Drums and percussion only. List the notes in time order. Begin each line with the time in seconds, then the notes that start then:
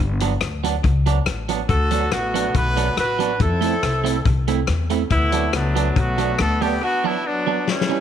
0.20 closed hi-hat
0.41 cross-stick, closed hi-hat
0.64 closed hi-hat
0.84 kick, closed hi-hat
1.06 closed hi-hat
1.26 cross-stick, closed hi-hat
1.49 closed hi-hat
1.69 kick, closed hi-hat
1.91 closed hi-hat
2.12 cross-stick, closed hi-hat
2.35 closed hi-hat
2.55 kick, closed hi-hat
2.77 closed hi-hat
2.97 cross-stick, closed hi-hat
3.20 closed hi-hat
3.40 kick, closed hi-hat
3.62 closed hi-hat
3.83 cross-stick, closed hi-hat
4.06 closed hi-hat
4.25 kick, closed hi-hat
4.48 closed hi-hat
4.67 cross-stick, closed hi-hat
4.90 closed hi-hat
5.10 kick, closed hi-hat
5.32 closed hi-hat
5.53 cross-stick, closed hi-hat
5.76 closed hi-hat
5.96 kick, closed hi-hat
6.18 closed hi-hat
6.39 cross-stick, closed hi-hat
6.62 open hi-hat
7.67 snare
7.81 snare